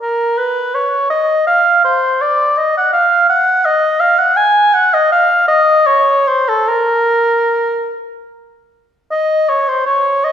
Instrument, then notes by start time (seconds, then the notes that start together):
oboe
0.02 A#4
0.38 B4
0.75 C#5
1.10 D#5
1.47 F5
1.84 C5
2.22 D5
2.57 D#5
2.77 F#5
2.93 F5
3.29 F#5
3.65 D#5
4.00 F5
4.19 F#5
4.37 G#5
4.74 F#5
4.94 D#5
5.12 F5
5.48 D#5
5.86 C#5
6.27 C5
6.49 A4
6.68 A#4
9.11 D#5
9.49 C#5
9.68 C5
9.86 C#5
10.24 D#5